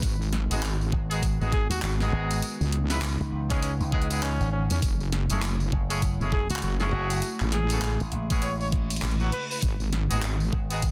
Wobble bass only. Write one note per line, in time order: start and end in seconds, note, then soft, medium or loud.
0.02 0.48 G#1 loud
0.51 0.91 G#1 medium
1.41 1.68 G#1 medium
1.82 2.11 G#1 loud
2.61 3.18 C#2 loud
4.70 4.81 E2 loud
4.82 5.28 F#1 loud
5.30 5.70 F#1 loud
6.20 6.48 F#1 loud
6.63 6.91 F#1 loud
7.41 7.98 A1 loud
9.03 9.31 A1 loud
9.63 10.08 G#1 loud
10.11 10.51 G#1 loud